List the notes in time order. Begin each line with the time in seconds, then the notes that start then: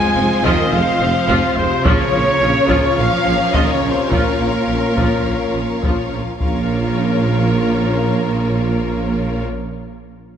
Already playing: G#3 C4 F4 C5 F5 G#5
0.16 F1 F3 C4
0.44 F1 D#3 F3 F4 D#5, taiko
0.72 F1 F3 G#3 F5
1.00 F1 F3 C4
1.28 F1 F3 F4, taiko
1.57 F1 C3 F3 G#3 C5
1.84 A#1 C#3 F3 C#4 F4 A#4 C#5 F5, taiko
2.13 A#1 F3 A#3
2.42 A#1 F3 C#4
2.69 A#1 F3 F4, taiko
2.97 A#1 F3 A#3 F5
3.25 A#1 F3 C#4
3.53 A#1 D#3 F3 F4 D#5, taiko
3.73 C#3 C#5
3.81 A#1 F3 A#3
3.92 C3 C5
4.10 A#1 A#2 F3 F4 A#4, taiko
4.39 A#1 F3 A#3
4.67 A#1 F3 C#4
4.97 A#1 F3 F4, taiko
5.25 A#1 F3 A#3
5.55 A#1 F3 C#4
5.83 A#1 F3 F4, taiko
6.11 A#1 F3 A#3
6.39 A#1 F3 A#3 C#4 F4 A#4 C#5 F5, taiko